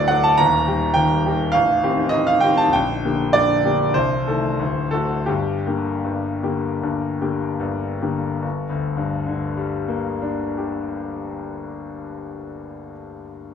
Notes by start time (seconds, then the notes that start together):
Already playing: D1 D2 F#3 A3 D4 D5
0.08 F#3 A3 D4 F#5
0.24 A5
0.38 D#1 D#2 A#5
0.66 D#3 G3 G4
0.94 D#1 D#2 G5
1.26 D#3 G3 G4
1.52 A0 A1 F5
1.83 D#3 C4 G4
2.09 A0 A1 D#5
2.27 F5
2.41 D#3 C4 G4 G5
2.57 A5
2.68 A#0
2.73 A#1 G5
3.05 D3 A#3 G4
3.33 A#0 A#1 D5
3.65 D3 A#3 G4
3.94 C1 C2 C5
4.27 D#3 A3 A4
4.59 D1 D2
4.91 D3 A3 F#4 A4
5.26 G1 G2 G4
5.67 D3 A#3 G4
6.04 G1 G2
6.43 D3 A#3 G4
6.83 G1 G2
7.21 D3 A#3 G4
7.60 G1 G2
8.02 D3 A#3 G4
8.42 G1
8.70 D2
8.97 G2
9.27 D3
9.57 G3
9.88 A#3
10.22 D4
10.58 G4